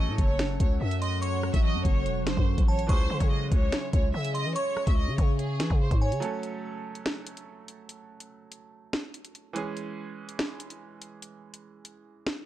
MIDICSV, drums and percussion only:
0, 0, Header, 1, 2, 480
1, 0, Start_track
1, 0, Tempo, 416667
1, 1410, Time_signature, 4, 2, 24, 8
1, 14350, End_track
2, 0, Start_track
2, 0, Title_t, "Drums"
2, 210, Note_on_c, 9, 36, 101
2, 211, Note_on_c, 9, 42, 85
2, 325, Note_off_c, 9, 36, 0
2, 326, Note_off_c, 9, 42, 0
2, 451, Note_on_c, 9, 42, 81
2, 452, Note_on_c, 9, 38, 123
2, 566, Note_off_c, 9, 42, 0
2, 567, Note_off_c, 9, 38, 0
2, 692, Note_on_c, 9, 36, 100
2, 692, Note_on_c, 9, 42, 97
2, 807, Note_off_c, 9, 36, 0
2, 807, Note_off_c, 9, 42, 0
2, 1051, Note_on_c, 9, 42, 79
2, 1166, Note_off_c, 9, 42, 0
2, 1171, Note_on_c, 9, 42, 80
2, 1286, Note_off_c, 9, 42, 0
2, 1411, Note_on_c, 9, 42, 95
2, 1527, Note_off_c, 9, 42, 0
2, 1651, Note_on_c, 9, 37, 92
2, 1767, Note_off_c, 9, 37, 0
2, 1771, Note_on_c, 9, 42, 89
2, 1772, Note_on_c, 9, 36, 90
2, 1886, Note_off_c, 9, 42, 0
2, 1887, Note_off_c, 9, 36, 0
2, 2130, Note_on_c, 9, 36, 102
2, 2131, Note_on_c, 9, 42, 84
2, 2246, Note_off_c, 9, 36, 0
2, 2246, Note_off_c, 9, 42, 0
2, 2371, Note_on_c, 9, 42, 79
2, 2486, Note_off_c, 9, 42, 0
2, 2610, Note_on_c, 9, 42, 98
2, 2611, Note_on_c, 9, 38, 109
2, 2726, Note_off_c, 9, 38, 0
2, 2726, Note_off_c, 9, 42, 0
2, 2731, Note_on_c, 9, 36, 94
2, 2847, Note_off_c, 9, 36, 0
2, 2970, Note_on_c, 9, 36, 95
2, 2971, Note_on_c, 9, 42, 78
2, 3086, Note_off_c, 9, 36, 0
2, 3087, Note_off_c, 9, 42, 0
2, 3211, Note_on_c, 9, 42, 78
2, 3326, Note_off_c, 9, 42, 0
2, 3330, Note_on_c, 9, 42, 92
2, 3331, Note_on_c, 9, 36, 120
2, 3445, Note_off_c, 9, 42, 0
2, 3446, Note_off_c, 9, 36, 0
2, 3691, Note_on_c, 9, 36, 93
2, 3691, Note_on_c, 9, 42, 87
2, 3806, Note_off_c, 9, 36, 0
2, 3806, Note_off_c, 9, 42, 0
2, 4050, Note_on_c, 9, 36, 99
2, 4051, Note_on_c, 9, 42, 88
2, 4165, Note_off_c, 9, 36, 0
2, 4166, Note_off_c, 9, 42, 0
2, 4290, Note_on_c, 9, 38, 124
2, 4290, Note_on_c, 9, 42, 82
2, 4405, Note_off_c, 9, 38, 0
2, 4405, Note_off_c, 9, 42, 0
2, 4530, Note_on_c, 9, 42, 101
2, 4531, Note_on_c, 9, 36, 99
2, 4646, Note_off_c, 9, 36, 0
2, 4646, Note_off_c, 9, 42, 0
2, 4890, Note_on_c, 9, 42, 79
2, 5005, Note_off_c, 9, 42, 0
2, 5010, Note_on_c, 9, 42, 82
2, 5125, Note_off_c, 9, 42, 0
2, 5250, Note_on_c, 9, 42, 91
2, 5365, Note_off_c, 9, 42, 0
2, 5491, Note_on_c, 9, 37, 92
2, 5606, Note_off_c, 9, 37, 0
2, 5610, Note_on_c, 9, 36, 92
2, 5610, Note_on_c, 9, 42, 89
2, 5725, Note_off_c, 9, 36, 0
2, 5725, Note_off_c, 9, 42, 0
2, 5969, Note_on_c, 9, 36, 99
2, 5970, Note_on_c, 9, 42, 85
2, 6084, Note_off_c, 9, 36, 0
2, 6085, Note_off_c, 9, 42, 0
2, 6210, Note_on_c, 9, 42, 77
2, 6325, Note_off_c, 9, 42, 0
2, 6449, Note_on_c, 9, 38, 114
2, 6449, Note_on_c, 9, 42, 99
2, 6565, Note_off_c, 9, 38, 0
2, 6565, Note_off_c, 9, 42, 0
2, 6569, Note_on_c, 9, 36, 95
2, 6685, Note_off_c, 9, 36, 0
2, 6809, Note_on_c, 9, 36, 91
2, 6810, Note_on_c, 9, 42, 75
2, 6924, Note_off_c, 9, 36, 0
2, 6925, Note_off_c, 9, 42, 0
2, 7050, Note_on_c, 9, 42, 82
2, 7165, Note_off_c, 9, 42, 0
2, 7169, Note_on_c, 9, 42, 90
2, 7284, Note_off_c, 9, 42, 0
2, 7410, Note_on_c, 9, 42, 72
2, 7525, Note_off_c, 9, 42, 0
2, 8009, Note_on_c, 9, 42, 68
2, 8124, Note_off_c, 9, 42, 0
2, 8130, Note_on_c, 9, 38, 119
2, 8245, Note_off_c, 9, 38, 0
2, 8369, Note_on_c, 9, 42, 95
2, 8485, Note_off_c, 9, 42, 0
2, 8490, Note_on_c, 9, 42, 80
2, 8605, Note_off_c, 9, 42, 0
2, 8850, Note_on_c, 9, 42, 76
2, 8965, Note_off_c, 9, 42, 0
2, 9090, Note_on_c, 9, 42, 89
2, 9206, Note_off_c, 9, 42, 0
2, 9450, Note_on_c, 9, 42, 86
2, 9565, Note_off_c, 9, 42, 0
2, 9810, Note_on_c, 9, 42, 84
2, 9926, Note_off_c, 9, 42, 0
2, 10290, Note_on_c, 9, 38, 109
2, 10405, Note_off_c, 9, 38, 0
2, 10530, Note_on_c, 9, 42, 83
2, 10646, Note_off_c, 9, 42, 0
2, 10651, Note_on_c, 9, 42, 82
2, 10766, Note_off_c, 9, 42, 0
2, 10771, Note_on_c, 9, 42, 73
2, 10886, Note_off_c, 9, 42, 0
2, 11010, Note_on_c, 9, 42, 88
2, 11125, Note_off_c, 9, 42, 0
2, 11251, Note_on_c, 9, 42, 70
2, 11366, Note_off_c, 9, 42, 0
2, 11850, Note_on_c, 9, 42, 70
2, 11965, Note_off_c, 9, 42, 0
2, 11970, Note_on_c, 9, 38, 123
2, 12085, Note_off_c, 9, 38, 0
2, 12210, Note_on_c, 9, 42, 98
2, 12325, Note_off_c, 9, 42, 0
2, 12330, Note_on_c, 9, 42, 80
2, 12445, Note_off_c, 9, 42, 0
2, 12690, Note_on_c, 9, 42, 81
2, 12805, Note_off_c, 9, 42, 0
2, 12929, Note_on_c, 9, 42, 89
2, 13045, Note_off_c, 9, 42, 0
2, 13290, Note_on_c, 9, 42, 87
2, 13405, Note_off_c, 9, 42, 0
2, 13650, Note_on_c, 9, 42, 83
2, 13765, Note_off_c, 9, 42, 0
2, 14129, Note_on_c, 9, 38, 107
2, 14244, Note_off_c, 9, 38, 0
2, 14350, End_track
0, 0, End_of_file